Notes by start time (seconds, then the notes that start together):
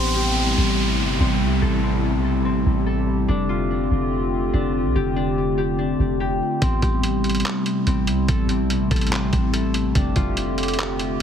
Already playing: A1 C3 G3 A3 B3 C4 D4 E4 G4 G5 C6, downlifter
0.16 G4
0.58 A1
0.99 G1
1.20 A1 C4
1.41 C2
1.62 A1 A4
1.83 C4
2.14 B1
2.25 A4
2.40 A1
2.45 C4
2.66 A1
2.86 A4
3.28 F1 D3 A3 C4 D4 F4 A4 D6
3.49 F4
3.91 F1
4.53 F1 D4
4.85 C2
4.95 F1 G4
5.16 D4
5.58 G4
5.79 D4
5.99 F1
6.20 G4
6.31 E1
6.61 A1 C3 G3 B3 C4 E4 C6, kick, closed hi-hat
6.82 A1 G4, kick, closed hi-hat
7.03 closed hi-hat
7.24 closed hi-hat
7.29 closed hi-hat
7.35 closed hi-hat
7.40 closed hi-hat
7.45 clap, closed hi-hat
7.66 closed hi-hat
7.87 A1 C4, closed hi-hat
8.07 C2, closed hi-hat
8.28 A1 A4, kick, closed hi-hat
8.49 C4, closed hi-hat
8.60 B1
8.70 closed hi-hat
8.75 A1
8.91 A1 A4, kick, closed hi-hat
8.96 closed hi-hat
9.01 closed hi-hat
9.07 closed hi-hat
9.12 C4, clap, closed hi-hat
9.33 A1, kick, closed hi-hat
9.53 A4, closed hi-hat
9.74 closed hi-hat
9.95 F1 D3 C4 D4 F4 G4 A4 G5 D6, kick, closed hi-hat
10.16 F1 F4, kick, closed hi-hat
10.37 closed hi-hat
10.58 closed hi-hat
10.63 closed hi-hat
10.68 closed hi-hat
10.74 closed hi-hat
10.79 clap, closed hi-hat
10.99 closed hi-hat